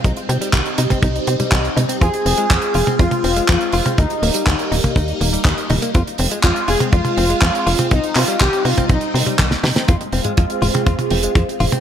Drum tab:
HH |xxxxxxxxxxxxxxxx|xxoxxxoxxxoxxxox|xxoxxxoxxxoxxxox|xxoxxxoxxxoxxxox|
CP |----x-------x---|----x-------x---|----x-------x---|----x-------x---|
SD |----------------|----------------|----------------|----------------|
T1 |-------o---o--o-|-------o-o-----o|-------o------o-|-------o-o-----o|
T2 |----------------|----------------|----------------|----------------|
BD |o---o--oo---o---|o---o---o---o---|o---o--oo---o---|o---o---o---o---|

HH |xxoxxxoxxxoxxxox|xxoxxxoxxxoxxxox|
CP |--x-x-------x---|----------------|
SD |------------oooo|----------------|
T1 |-------o---o--o-|-------o-o-----o|
T2 |----------------|o--o--o-o-----o-|
BD |o---o--oo---o---|o---o---o---o---|